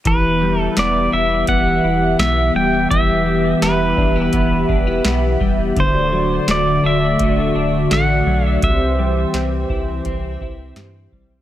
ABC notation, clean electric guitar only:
X:1
M:4/4
L:1/16
Q:1/4=84
K:Em
V:1 name="Clean electric guitar"
E,2 G,2 B,2 E2 B,2 E2 B,2 G,2 | E,2 G,2 B,2 D E B,2 D E B,2 G,2 | D,2 F,2 A,2 D2 A,2 D2 A,2 F,2 | z2 G,2 C2 E2 C2 E2 C2 G,2 |]